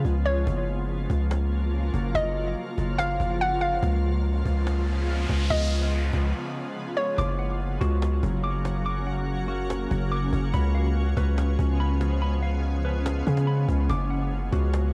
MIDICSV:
0, 0, Header, 1, 7, 480
1, 0, Start_track
1, 0, Key_signature, 6, "major"
1, 0, Tempo, 419580
1, 537, Time_signature, 4, 2, 24, 8
1, 17080, End_track
2, 0, Start_track
2, 0, Title_t, "Clean electric guitar"
2, 0, Program_c, 0, 27
2, 8219, Note_on_c, 0, 86, 95
2, 8452, Note_on_c, 0, 78, 82
2, 8933, Note_on_c, 0, 66, 95
2, 9422, Note_on_c, 0, 54, 81
2, 9639, Note_off_c, 0, 86, 0
2, 9652, Note_on_c, 0, 86, 100
2, 9894, Note_off_c, 0, 78, 0
2, 10121, Note_off_c, 0, 86, 0
2, 10135, Note_on_c, 0, 86, 106
2, 10374, Note_off_c, 0, 66, 0
2, 10375, Note_on_c, 0, 78, 85
2, 10848, Note_on_c, 0, 66, 104
2, 10859, Note_off_c, 0, 54, 0
2, 11331, Note_on_c, 0, 54, 74
2, 11560, Note_off_c, 0, 86, 0
2, 11574, Note_on_c, 0, 86, 110
2, 11816, Note_off_c, 0, 78, 0
2, 12050, Note_off_c, 0, 86, 0
2, 12052, Note_off_c, 0, 66, 0
2, 12054, Note_off_c, 0, 54, 0
2, 12054, Note_on_c, 0, 83, 109
2, 12294, Note_on_c, 0, 77, 84
2, 12778, Note_on_c, 0, 71, 103
2, 13257, Note_on_c, 0, 61, 72
2, 13485, Note_off_c, 0, 83, 0
2, 13499, Note_on_c, 0, 83, 104
2, 13735, Note_off_c, 0, 77, 0
2, 13963, Note_off_c, 0, 83, 0
2, 13977, Note_on_c, 0, 83, 95
2, 14214, Note_on_c, 0, 77, 91
2, 14217, Note_off_c, 0, 71, 0
2, 14696, Note_on_c, 0, 71, 94
2, 14697, Note_off_c, 0, 61, 0
2, 15182, Note_on_c, 0, 61, 73
2, 15397, Note_off_c, 0, 83, 0
2, 15410, Note_on_c, 0, 83, 103
2, 15655, Note_off_c, 0, 77, 0
2, 15893, Note_off_c, 0, 83, 0
2, 15896, Note_off_c, 0, 71, 0
2, 15899, Note_off_c, 0, 61, 0
2, 15900, Note_on_c, 0, 86, 93
2, 16134, Note_on_c, 0, 78, 85
2, 16616, Note_on_c, 0, 66, 95
2, 17080, Note_off_c, 0, 66, 0
2, 17080, Note_off_c, 0, 78, 0
2, 17080, Note_off_c, 0, 86, 0
2, 17080, End_track
3, 0, Start_track
3, 0, Title_t, "Synth pluck"
3, 0, Program_c, 1, 84
3, 0, Note_on_c, 1, 75, 99
3, 251, Note_off_c, 1, 75, 0
3, 291, Note_on_c, 1, 73, 83
3, 521, Note_off_c, 1, 73, 0
3, 2459, Note_on_c, 1, 75, 110
3, 3372, Note_off_c, 1, 75, 0
3, 3413, Note_on_c, 1, 77, 94
3, 3866, Note_off_c, 1, 77, 0
3, 3901, Note_on_c, 1, 78, 97
3, 4127, Note_off_c, 1, 78, 0
3, 4130, Note_on_c, 1, 77, 72
3, 4361, Note_off_c, 1, 77, 0
3, 6296, Note_on_c, 1, 75, 100
3, 7930, Note_off_c, 1, 75, 0
3, 7971, Note_on_c, 1, 73, 81
3, 8201, Note_off_c, 1, 73, 0
3, 17080, End_track
4, 0, Start_track
4, 0, Title_t, "Ambient pad"
4, 0, Program_c, 2, 92
4, 0, Note_on_c, 2, 49, 80
4, 0, Note_on_c, 2, 53, 72
4, 0, Note_on_c, 2, 56, 73
4, 0, Note_on_c, 2, 59, 72
4, 0, Note_on_c, 2, 65, 87
4, 492, Note_off_c, 2, 53, 0
4, 498, Note_off_c, 2, 56, 0
4, 498, Note_off_c, 2, 59, 0
4, 498, Note_off_c, 2, 65, 0
4, 535, Note_on_c, 2, 53, 74
4, 536, Note_on_c, 2, 54, 70
4, 536, Note_on_c, 2, 58, 75
4, 536, Note_on_c, 2, 65, 83
4, 4332, Note_off_c, 2, 49, 0
4, 4337, Note_off_c, 2, 54, 0
4, 4337, Note_off_c, 2, 58, 0
4, 4378, Note_on_c, 2, 56, 70
4, 4378, Note_on_c, 2, 59, 73
4, 4379, Note_on_c, 2, 49, 81
4, 8170, Note_off_c, 2, 53, 0
4, 8170, Note_off_c, 2, 65, 0
4, 8179, Note_off_c, 2, 49, 0
4, 8179, Note_off_c, 2, 56, 0
4, 8179, Note_off_c, 2, 59, 0
4, 8215, Note_on_c, 2, 54, 74
4, 8216, Note_on_c, 2, 49, 80
4, 8216, Note_on_c, 2, 58, 74
4, 8216, Note_on_c, 2, 61, 76
4, 8216, Note_on_c, 2, 66, 90
4, 12017, Note_off_c, 2, 54, 0
4, 12018, Note_off_c, 2, 58, 0
4, 12018, Note_off_c, 2, 66, 0
4, 12057, Note_on_c, 2, 53, 73
4, 12057, Note_on_c, 2, 59, 74
4, 12058, Note_on_c, 2, 56, 71
4, 15850, Note_off_c, 2, 61, 0
4, 15858, Note_off_c, 2, 53, 0
4, 15858, Note_off_c, 2, 56, 0
4, 15858, Note_off_c, 2, 59, 0
4, 15896, Note_on_c, 2, 61, 74
4, 15896, Note_on_c, 2, 66, 92
4, 15897, Note_on_c, 2, 54, 76
4, 15897, Note_on_c, 2, 58, 73
4, 17080, Note_off_c, 2, 49, 0
4, 17080, Note_off_c, 2, 54, 0
4, 17080, Note_off_c, 2, 58, 0
4, 17080, Note_off_c, 2, 61, 0
4, 17080, Note_off_c, 2, 66, 0
4, 17080, End_track
5, 0, Start_track
5, 0, Title_t, "808-style bass"
5, 0, Program_c, 3, 38
5, 54, Note_on_c, 3, 37, 111
5, 516, Note_off_c, 3, 37, 0
5, 536, Note_on_c, 3, 30, 111
5, 1227, Note_off_c, 3, 30, 0
5, 1256, Note_on_c, 3, 37, 101
5, 2178, Note_off_c, 3, 37, 0
5, 2216, Note_on_c, 3, 30, 99
5, 2446, Note_off_c, 3, 30, 0
5, 2457, Note_on_c, 3, 30, 107
5, 2917, Note_off_c, 3, 30, 0
5, 3177, Note_on_c, 3, 30, 102
5, 3637, Note_off_c, 3, 30, 0
5, 3659, Note_on_c, 3, 30, 107
5, 4349, Note_off_c, 3, 30, 0
5, 4376, Note_on_c, 3, 37, 115
5, 5067, Note_off_c, 3, 37, 0
5, 5096, Note_on_c, 3, 37, 98
5, 6017, Note_off_c, 3, 37, 0
5, 6055, Note_on_c, 3, 37, 100
5, 6286, Note_off_c, 3, 37, 0
5, 6296, Note_on_c, 3, 37, 111
5, 6987, Note_off_c, 3, 37, 0
5, 7015, Note_on_c, 3, 37, 101
5, 7246, Note_off_c, 3, 37, 0
5, 8215, Note_on_c, 3, 30, 114
5, 8907, Note_off_c, 3, 30, 0
5, 8935, Note_on_c, 3, 37, 102
5, 9396, Note_off_c, 3, 37, 0
5, 9417, Note_on_c, 3, 30, 105
5, 11291, Note_off_c, 3, 30, 0
5, 11338, Note_on_c, 3, 30, 101
5, 11798, Note_off_c, 3, 30, 0
5, 11816, Note_on_c, 3, 30, 104
5, 12046, Note_off_c, 3, 30, 0
5, 12056, Note_on_c, 3, 37, 111
5, 12747, Note_off_c, 3, 37, 0
5, 12776, Note_on_c, 3, 37, 101
5, 13237, Note_off_c, 3, 37, 0
5, 13258, Note_on_c, 3, 37, 101
5, 15131, Note_off_c, 3, 37, 0
5, 15177, Note_on_c, 3, 49, 107
5, 15637, Note_off_c, 3, 49, 0
5, 15655, Note_on_c, 3, 37, 107
5, 15886, Note_off_c, 3, 37, 0
5, 15895, Note_on_c, 3, 30, 112
5, 16587, Note_off_c, 3, 30, 0
5, 16616, Note_on_c, 3, 37, 104
5, 17077, Note_off_c, 3, 37, 0
5, 17080, End_track
6, 0, Start_track
6, 0, Title_t, "Noise sweep"
6, 0, Program_c, 4, 103
6, 4376, Note_on_c, 4, 60, 84
6, 8216, Note_off_c, 4, 60, 0
6, 17080, End_track
7, 0, Start_track
7, 0, Title_t, "Cajon"
7, 54, Note_on_c, 9, 36, 81
7, 168, Note_off_c, 9, 36, 0
7, 416, Note_on_c, 9, 38, 51
7, 530, Note_off_c, 9, 38, 0
7, 536, Note_on_c, 9, 36, 115
7, 650, Note_off_c, 9, 36, 0
7, 778, Note_on_c, 9, 38, 39
7, 892, Note_off_c, 9, 38, 0
7, 1018, Note_on_c, 9, 38, 42
7, 1132, Note_off_c, 9, 38, 0
7, 1256, Note_on_c, 9, 36, 96
7, 1370, Note_off_c, 9, 36, 0
7, 1498, Note_on_c, 9, 38, 124
7, 1613, Note_off_c, 9, 38, 0
7, 1736, Note_on_c, 9, 38, 39
7, 1850, Note_off_c, 9, 38, 0
7, 1975, Note_on_c, 9, 38, 42
7, 2090, Note_off_c, 9, 38, 0
7, 2216, Note_on_c, 9, 36, 88
7, 2330, Note_off_c, 9, 36, 0
7, 2457, Note_on_c, 9, 36, 117
7, 2571, Note_off_c, 9, 36, 0
7, 2701, Note_on_c, 9, 38, 36
7, 2815, Note_off_c, 9, 38, 0
7, 2938, Note_on_c, 9, 38, 42
7, 3053, Note_off_c, 9, 38, 0
7, 3177, Note_on_c, 9, 36, 96
7, 3291, Note_off_c, 9, 36, 0
7, 3420, Note_on_c, 9, 38, 121
7, 3534, Note_off_c, 9, 38, 0
7, 3658, Note_on_c, 9, 36, 97
7, 3773, Note_off_c, 9, 36, 0
7, 4136, Note_on_c, 9, 38, 46
7, 4250, Note_off_c, 9, 38, 0
7, 4376, Note_on_c, 9, 36, 118
7, 4490, Note_off_c, 9, 36, 0
7, 4619, Note_on_c, 9, 38, 38
7, 4734, Note_off_c, 9, 38, 0
7, 4858, Note_on_c, 9, 38, 42
7, 4972, Note_off_c, 9, 38, 0
7, 5096, Note_on_c, 9, 36, 94
7, 5210, Note_off_c, 9, 36, 0
7, 5340, Note_on_c, 9, 38, 122
7, 5454, Note_off_c, 9, 38, 0
7, 6055, Note_on_c, 9, 36, 90
7, 6170, Note_off_c, 9, 36, 0
7, 6296, Note_on_c, 9, 36, 120
7, 6410, Note_off_c, 9, 36, 0
7, 7015, Note_on_c, 9, 36, 97
7, 7130, Note_off_c, 9, 36, 0
7, 8215, Note_on_c, 9, 36, 120
7, 8330, Note_off_c, 9, 36, 0
7, 8697, Note_on_c, 9, 38, 45
7, 8811, Note_off_c, 9, 38, 0
7, 8935, Note_on_c, 9, 36, 100
7, 8939, Note_on_c, 9, 38, 96
7, 9050, Note_off_c, 9, 36, 0
7, 9053, Note_off_c, 9, 38, 0
7, 9178, Note_on_c, 9, 38, 125
7, 9292, Note_off_c, 9, 38, 0
7, 9417, Note_on_c, 9, 36, 99
7, 9531, Note_off_c, 9, 36, 0
7, 9654, Note_on_c, 9, 38, 45
7, 9768, Note_off_c, 9, 38, 0
7, 9897, Note_on_c, 9, 38, 99
7, 10011, Note_off_c, 9, 38, 0
7, 10136, Note_on_c, 9, 38, 42
7, 10250, Note_off_c, 9, 38, 0
7, 10617, Note_on_c, 9, 38, 42
7, 10731, Note_off_c, 9, 38, 0
7, 11098, Note_on_c, 9, 38, 121
7, 11213, Note_off_c, 9, 38, 0
7, 11338, Note_on_c, 9, 36, 96
7, 11452, Note_off_c, 9, 36, 0
7, 11576, Note_on_c, 9, 38, 45
7, 11690, Note_off_c, 9, 38, 0
7, 11816, Note_on_c, 9, 36, 97
7, 11930, Note_off_c, 9, 36, 0
7, 12057, Note_on_c, 9, 36, 122
7, 12171, Note_off_c, 9, 36, 0
7, 12537, Note_on_c, 9, 38, 45
7, 12652, Note_off_c, 9, 38, 0
7, 12776, Note_on_c, 9, 36, 103
7, 12781, Note_on_c, 9, 38, 96
7, 12891, Note_off_c, 9, 36, 0
7, 12895, Note_off_c, 9, 38, 0
7, 13017, Note_on_c, 9, 38, 127
7, 13132, Note_off_c, 9, 38, 0
7, 13257, Note_on_c, 9, 36, 96
7, 13372, Note_off_c, 9, 36, 0
7, 13494, Note_on_c, 9, 38, 43
7, 13608, Note_off_c, 9, 38, 0
7, 13737, Note_on_c, 9, 38, 101
7, 13851, Note_off_c, 9, 38, 0
7, 13975, Note_on_c, 9, 38, 42
7, 14090, Note_off_c, 9, 38, 0
7, 14456, Note_on_c, 9, 38, 45
7, 14571, Note_off_c, 9, 38, 0
7, 14937, Note_on_c, 9, 38, 124
7, 15052, Note_off_c, 9, 38, 0
7, 15177, Note_on_c, 9, 36, 101
7, 15292, Note_off_c, 9, 36, 0
7, 15295, Note_on_c, 9, 38, 93
7, 15410, Note_off_c, 9, 38, 0
7, 15655, Note_on_c, 9, 36, 95
7, 15769, Note_off_c, 9, 36, 0
7, 15896, Note_on_c, 9, 36, 120
7, 16011, Note_off_c, 9, 36, 0
7, 16376, Note_on_c, 9, 38, 44
7, 16491, Note_off_c, 9, 38, 0
7, 16616, Note_on_c, 9, 36, 98
7, 16619, Note_on_c, 9, 38, 92
7, 16730, Note_off_c, 9, 36, 0
7, 16734, Note_off_c, 9, 38, 0
7, 16857, Note_on_c, 9, 38, 127
7, 16972, Note_off_c, 9, 38, 0
7, 17080, End_track
0, 0, End_of_file